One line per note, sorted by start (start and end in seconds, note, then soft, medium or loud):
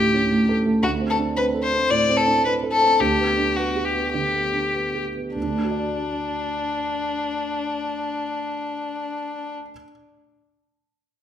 0.00 0.83 D2 soft
0.00 0.24 A2 soft
0.00 0.31 A3 soft
0.00 0.14 C#4 soft
0.00 0.56 G4 medium
0.00 0.49 A4 soft
0.14 0.42 C#4 soft
0.31 0.59 A3 soft
0.49 0.76 A4 soft
0.66 0.83 A3 soft
0.83 1.86 D2 soft
0.83 0.91 F#4 medium
1.01 1.29 C4 soft
1.10 1.18 A4 soft
1.18 1.47 D4 soft
1.36 1.65 C4 soft
1.36 1.45 B4 medium
1.54 1.83 A4 soft
1.63 1.92 C5 medium
1.72 2.01 C4 soft
1.90 2.19 A2 soft
1.90 2.19 D5 medium
2.09 2.37 C4 soft
2.17 2.44 A4 medium
2.27 2.55 D4 soft
2.44 2.74 C4 soft
2.44 2.53 B4 medium
2.63 2.92 A4 soft
2.72 3.02 A4 medium
2.82 3.00 C4 soft
3.00 4.11 D2 soft
3.00 3.58 G4 medium
3.18 3.48 B3 soft
3.37 3.67 D4 soft
3.56 3.87 B3 soft
3.56 3.86 F#4 soft
3.76 4.06 G4 soft
3.85 4.13 G4 soft
3.95 4.26 B3 soft
4.14 4.46 D3 soft
4.14 5.03 G4 soft
4.34 4.66 B3 soft
4.53 4.86 D4 soft
4.74 5.07 B3 soft
4.95 5.28 G4 soft
5.16 5.36 B3 soft
5.36 9.54 D2 soft
5.36 9.55 D4 soft
5.43 9.61 D3 soft
5.50 9.69 A3 soft
5.57 9.76 D4 soft
5.64 9.83 F#4 soft
5.71 9.90 D5 soft